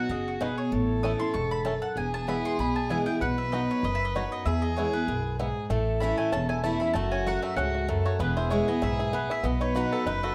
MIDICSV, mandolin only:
0, 0, Header, 1, 2, 480
1, 0, Start_track
1, 0, Key_signature, 4, "major"
1, 0, Tempo, 311688
1, 1101, Time_signature, 4, 2, 24, 8
1, 15937, End_track
2, 0, Start_track
2, 0, Title_t, "Mandolin"
2, 0, Program_c, 0, 25
2, 166, Note_on_c, 0, 75, 75
2, 409, Note_off_c, 0, 75, 0
2, 429, Note_on_c, 0, 66, 64
2, 627, Note_off_c, 0, 66, 0
2, 641, Note_on_c, 0, 71, 83
2, 882, Note_off_c, 0, 71, 0
2, 888, Note_on_c, 0, 73, 79
2, 1535, Note_off_c, 0, 73, 0
2, 1589, Note_on_c, 0, 87, 84
2, 1834, Note_off_c, 0, 87, 0
2, 1840, Note_on_c, 0, 84, 95
2, 2053, Note_off_c, 0, 84, 0
2, 2059, Note_on_c, 0, 85, 93
2, 2315, Note_off_c, 0, 85, 0
2, 2329, Note_on_c, 0, 83, 93
2, 2533, Note_off_c, 0, 83, 0
2, 2539, Note_on_c, 0, 81, 79
2, 2795, Note_off_c, 0, 81, 0
2, 2800, Note_on_c, 0, 78, 94
2, 3013, Note_off_c, 0, 78, 0
2, 3039, Note_on_c, 0, 80, 76
2, 3286, Note_off_c, 0, 80, 0
2, 3295, Note_on_c, 0, 81, 94
2, 3500, Note_off_c, 0, 81, 0
2, 3518, Note_on_c, 0, 83, 87
2, 3765, Note_off_c, 0, 83, 0
2, 3777, Note_on_c, 0, 84, 107
2, 3982, Note_off_c, 0, 84, 0
2, 4006, Note_on_c, 0, 83, 82
2, 4239, Note_off_c, 0, 83, 0
2, 4246, Note_on_c, 0, 81, 89
2, 4456, Note_off_c, 0, 81, 0
2, 4473, Note_on_c, 0, 80, 87
2, 4706, Note_off_c, 0, 80, 0
2, 4712, Note_on_c, 0, 79, 92
2, 4929, Note_off_c, 0, 79, 0
2, 4946, Note_on_c, 0, 78, 83
2, 5198, Note_off_c, 0, 78, 0
2, 5204, Note_on_c, 0, 76, 81
2, 5416, Note_off_c, 0, 76, 0
2, 5422, Note_on_c, 0, 75, 74
2, 5677, Note_off_c, 0, 75, 0
2, 5709, Note_on_c, 0, 73, 90
2, 5908, Note_off_c, 0, 73, 0
2, 5924, Note_on_c, 0, 75, 85
2, 6069, Note_off_c, 0, 75, 0
2, 6082, Note_on_c, 0, 76, 92
2, 6228, Note_off_c, 0, 76, 0
2, 6235, Note_on_c, 0, 75, 79
2, 6384, Note_off_c, 0, 75, 0
2, 6400, Note_on_c, 0, 73, 78
2, 6646, Note_off_c, 0, 73, 0
2, 6652, Note_on_c, 0, 75, 83
2, 6860, Note_off_c, 0, 75, 0
2, 6861, Note_on_c, 0, 76, 90
2, 7112, Note_on_c, 0, 75, 88
2, 7117, Note_off_c, 0, 76, 0
2, 7330, Note_off_c, 0, 75, 0
2, 7337, Note_on_c, 0, 73, 71
2, 7591, Note_off_c, 0, 73, 0
2, 7597, Note_on_c, 0, 71, 88
2, 8250, Note_off_c, 0, 71, 0
2, 9246, Note_on_c, 0, 83, 84
2, 9504, Note_off_c, 0, 83, 0
2, 9510, Note_on_c, 0, 80, 88
2, 9729, Note_off_c, 0, 80, 0
2, 9740, Note_on_c, 0, 81, 97
2, 9988, Note_off_c, 0, 81, 0
2, 9994, Note_on_c, 0, 80, 90
2, 10210, Note_off_c, 0, 80, 0
2, 10218, Note_on_c, 0, 81, 83
2, 10463, Note_off_c, 0, 81, 0
2, 10469, Note_on_c, 0, 83, 97
2, 10674, Note_off_c, 0, 83, 0
2, 10680, Note_on_c, 0, 81, 89
2, 10946, Note_off_c, 0, 81, 0
2, 10956, Note_on_c, 0, 80, 91
2, 11171, Note_off_c, 0, 80, 0
2, 11201, Note_on_c, 0, 78, 84
2, 11428, Note_off_c, 0, 78, 0
2, 11435, Note_on_c, 0, 76, 89
2, 11643, Note_off_c, 0, 76, 0
2, 11649, Note_on_c, 0, 78, 93
2, 12346, Note_off_c, 0, 78, 0
2, 12405, Note_on_c, 0, 73, 81
2, 12616, Note_off_c, 0, 73, 0
2, 12628, Note_on_c, 0, 71, 78
2, 12879, Note_off_c, 0, 71, 0
2, 12886, Note_on_c, 0, 72, 92
2, 13096, Note_off_c, 0, 72, 0
2, 13104, Note_on_c, 0, 73, 74
2, 13358, Note_off_c, 0, 73, 0
2, 13370, Note_on_c, 0, 75, 87
2, 13578, Note_off_c, 0, 75, 0
2, 13601, Note_on_c, 0, 76, 88
2, 13847, Note_off_c, 0, 76, 0
2, 13858, Note_on_c, 0, 68, 65
2, 14062, Note_off_c, 0, 68, 0
2, 14080, Note_on_c, 0, 71, 79
2, 14326, Note_off_c, 0, 71, 0
2, 14338, Note_on_c, 0, 76, 99
2, 14542, Note_off_c, 0, 76, 0
2, 14550, Note_on_c, 0, 75, 77
2, 14794, Note_off_c, 0, 75, 0
2, 14801, Note_on_c, 0, 73, 88
2, 15013, Note_off_c, 0, 73, 0
2, 15026, Note_on_c, 0, 71, 77
2, 15277, Note_off_c, 0, 71, 0
2, 15283, Note_on_c, 0, 69, 85
2, 15495, Note_off_c, 0, 69, 0
2, 15501, Note_on_c, 0, 71, 84
2, 15753, Note_off_c, 0, 71, 0
2, 15759, Note_on_c, 0, 69, 90
2, 15937, Note_off_c, 0, 69, 0
2, 15937, End_track
0, 0, End_of_file